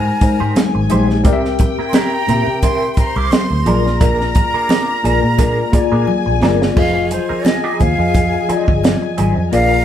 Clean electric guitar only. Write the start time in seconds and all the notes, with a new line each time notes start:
0.22 muted clean electric guitar stroke
0.40 D#4 G4 C5
0.56 muted clean electric guitar stroke
0.75 muted clean electric guitar stroke
0.90 D#4 G4 C5
1.09 muted clean electric guitar stroke
1.25 C4 E4 A#4
1.44 muted clean electric guitar stroke
1.60 muted clean electric guitar stroke
1.79 C4 E4 A#4
1.94 C4 E4 A#4
2.13 muted clean electric guitar stroke
2.29 C4 E4 A#4
2.48 muted clean electric guitar stroke
2.63 C4 E4 A#4
2.98 muted clean electric guitar stroke
3.17 C4 E4 A#4
3.33 muted clean electric guitar stroke
3.51 muted clean electric guitar stroke
3.66 D4 G#4 A#4
3.86 muted clean electric guitar stroke
4.01 D4 G#4 A#4
4.20 muted clean electric guitar stroke
4.36 muted clean electric guitar stroke
4.54 D4 G#4 A#4
4.70 D4 G#4 A#4
4.89 muted clean electric guitar stroke
5.04 D4 G#4 A#4
5.23 muted clean electric guitar stroke
5.38 D4 G#4 A#4
5.73 muted clean electric guitar stroke
5.92 D4 G#4 A#4
6.07 muted clean electric guitar stroke
6.26 muted clean electric guitar stroke
6.42 D4 G#4 A#4
6.61 muted clean electric guitar stroke
6.77 C4 D#4 G#4
6.96 muted clean electric guitar stroke
7.11 muted clean electric guitar stroke
7.29 C4 D#4 A#4
7.45 muted clean electric guitar stroke
7.64 C4 D#4 G#4
7.80 muted clean electric guitar stroke
7.99 muted clean electric guitar stroke
8.34 muted clean electric guitar stroke
8.49 C4 D#4 G#4
8.68 muted clean electric guitar stroke
8.84 muted clean electric guitar stroke
9.02 muted clean electric guitar stroke
9.18 C4 D#4 G#4
9.37 muted clean electric guitar stroke
9.53 A#3 D4 G#4
9.72 muted clean electric guitar stroke